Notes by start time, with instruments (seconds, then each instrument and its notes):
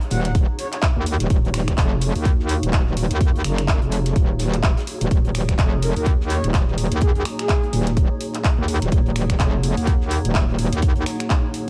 Already playing: analog synth pad A#3 F#4 D#5, ambient pad D#4 F#4 G#4 C#5, downlifter
0.01 closed hi-hat
0.11 wobble bass D#1, soft synth lead F#5, closed hi-hat, open hi-hat
0.25 soft synth lead F#5, snare, closed hi-hat
0.35 kick, closed hi-hat
0.59 soft synth lead C#5, closed hi-hat, open hi-hat
0.73 soft synth lead C#5, clap, closed hi-hat
0.82 kick, snare, clap, closed hi-hat
0.96 wobble bass D#2
1.06 closed hi-hat, open hi-hat
1.20 wobble bass D#1, snare, closed hi-hat
1.30 wobble bass D#1, analog synth pad F5, kick, closed hi-hat
1.45 closed hi-hat
1.54 finger snap, closed hi-hat, open hi-hat
1.68 finger snap, kick, snare, closed hi-hat
1.77 wobble bass F1, kick, snare, clap, closed hi-hat
2.01 closed hi-hat, open hi-hat
2.15 wobble bass D#2, open hi-hat
2.25 kick, closed hi-hat
2.40 snare
2.49 closed hi-hat, open hi-hat
2.63 wobble bass D#1, closed hi-hat
2.72 kick, snare, clap, closed hi-hat
2.87 snare
2.97 closed hi-hat, open hi-hat
3.11 wobble bass D#2, snare, closed hi-hat
3.21 kick, closed hi-hat
3.35 wobble bass D#2, closed hi-hat
3.44 wobble bass F#1, finger snap, closed hi-hat, open hi-hat
3.58 finger snap, snare, closed hi-hat
3.68 kick, snare, clap, closed hi-hat
3.82 wobble bass F1, closed hi-hat
3.92 closed hi-hat, open hi-hat
4.06 snare, closed hi-hat
4.16 wobble bass D#1, kick, closed hi-hat
4.39 snare, closed hi-hat, open hi-hat
4.54 clap, closed hi-hat
4.63 wobble bass D#1, kick, clap, closed hi-hat
4.77 snare, closed hi-hat
4.87 open hi-hat
5.01 wobble bass D#1, closed hi-hat
5.11 wobble bass D#1, analog synth pad D#5, kick, closed hi-hat
5.25 closed hi-hat
5.35 finger snap, closed hi-hat, open hi-hat
5.49 finger snap, kick, snare, closed hi-hat
5.58 wobble bass F1, kick, snare, clap, closed hi-hat
5.82 soft synth lead A#4, closed hi-hat, open hi-hat
5.96 wobble bass D#2, soft synth lead A#4, open hi-hat
6.06 kick, closed hi-hat
6.21 snare
6.30 soft synth lead C#5, closed hi-hat, open hi-hat
6.44 wobble bass D#1, closed hi-hat
6.54 kick, snare, clap, closed hi-hat
6.68 snare
6.78 closed hi-hat, open hi-hat
6.91 wobble bass D#2, snare, closed hi-hat
7.01 soft synth lead G#4, kick, closed hi-hat
7.15 wobble bass D#2, soft synth lead G#4, closed hi-hat
7.25 finger snap, closed hi-hat, open hi-hat
7.39 soft synth lead G#4, finger snap, snare, closed hi-hat
7.49 kick, snare, clap, closed hi-hat
7.63 closed hi-hat
7.73 wobble bass D#1, closed hi-hat, open hi-hat
7.87 snare, closed hi-hat
7.97 kick, closed hi-hat
8.21 closed hi-hat, open hi-hat
8.35 clap, closed hi-hat
8.44 kick, snare, clap, closed hi-hat
8.58 wobble bass D#2
8.68 closed hi-hat, open hi-hat
8.82 wobble bass D#1, snare, closed hi-hat
8.92 wobble bass D#1, analog synth pad F#5, kick, closed hi-hat
9.06 closed hi-hat
9.16 finger snap, closed hi-hat, open hi-hat
9.30 finger snap, kick, snare, closed hi-hat
9.40 wobble bass F1, kick, snare, clap, closed hi-hat
9.63 closed hi-hat, open hi-hat
9.77 wobble bass D#2, open hi-hat
9.87 kick, closed hi-hat
10.01 snare
10.11 closed hi-hat, open hi-hat
10.25 wobble bass D#1, closed hi-hat
10.35 kick, snare, clap, closed hi-hat
10.48 snare
10.58 closed hi-hat, open hi-hat
10.73 wobble bass D#2, snare, closed hi-hat
10.82 kick, closed hi-hat
10.96 wobble bass D#2, closed hi-hat
11.06 finger snap, snare, closed hi-hat, open hi-hat
11.20 finger snap, closed hi-hat
11.30 kick, clap, closed hi-hat
11.54 closed hi-hat, open hi-hat